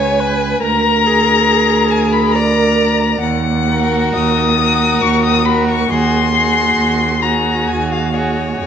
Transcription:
0.00 0.60 C#2 medium
0.00 0.64 B4 medium
0.00 0.21 C#5 medium
0.00 0.62 G#5 medium
0.20 0.62 B4 medium
0.62 3.17 D2 medium
0.62 1.08 A#4 medium
0.62 2.37 A#4 medium
0.62 1.92 A#5 loud
1.06 2.35 G#4 medium
1.91 2.14 G#5 medium
2.12 2.33 B5 medium
2.32 3.21 A#4 medium
2.32 3.22 D5 medium
2.32 3.20 A#5 loud
3.20 4.05 D#2 medium
3.20 4.14 F#5 medium
3.68 4.59 F#4 medium
3.68 4.59 A#4 medium
4.15 4.93 D#2 medium
4.15 5.03 D#6 loud
4.60 5.45 F#4 medium
4.60 5.46 A#4 medium
5.02 5.80 D#2 medium
5.02 5.23 C#6 medium
5.24 5.47 D#6 medium
5.45 5.90 F#4 medium
5.45 5.89 A#4 soft
5.45 5.68 B5 medium
5.69 5.92 C#6 medium
5.90 6.68 D#2 medium
5.90 6.34 F#4 soft
5.90 6.33 G#4 medium
5.90 7.24 C6 loud
6.34 7.22 F#4 medium
6.34 7.21 G#4 medium
6.78 7.57 D#2 medium
7.22 8.11 F#4 medium
7.22 8.11 G#4 soft
7.22 7.69 A#5 medium
7.67 8.48 D#2 medium
7.67 7.90 G#5 medium
7.92 8.16 F5 medium
8.13 8.58 F#4 soft
8.13 8.58 G#4 soft
8.13 8.67 C#5 medium
8.60 8.67 F2 medium

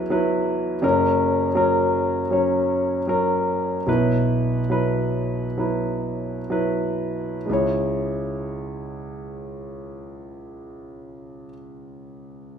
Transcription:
0.00 0.80 E2 medium
0.00 0.10 F#3 medium
0.00 0.11 E4 medium
0.00 0.12 B4 medium
0.10 0.74 F#3 medium
0.10 0.74 E4 medium
0.10 0.75 B4 medium
0.82 3.83 F#1 medium
0.82 3.83 F#2 medium
0.82 1.47 F#3 medium
0.82 1.47 C#4 medium
0.82 1.48 A#4 medium
1.55 2.21 F#3 medium
1.55 2.21 C#4 medium
1.55 2.22 A#4 medium
2.31 2.98 F#3 medium
2.31 2.98 C#4 medium
2.31 2.99 C#5 medium
3.07 3.76 F#3 medium
3.07 3.77 C#4 medium
3.07 3.77 A#4 medium
3.87 7.45 B1 soft
3.87 7.45 B2 medium
3.87 4.59 F#3 medium
3.87 4.59 E4 medium
3.87 4.60 B4 medium
4.70 5.45 F#3 medium
4.70 5.46 E4 soft
4.70 5.46 B4 medium
5.58 6.37 F#3 soft
5.58 6.38 E4 soft
5.58 6.39 B4 medium
6.50 7.36 F#3 medium
6.50 7.36 E4 medium
6.50 7.37 B4 medium
7.46 11.47 C#2 medium
7.46 11.44 G#3 soft
7.46 11.48 E4 soft
7.53 11.51 C#5 medium

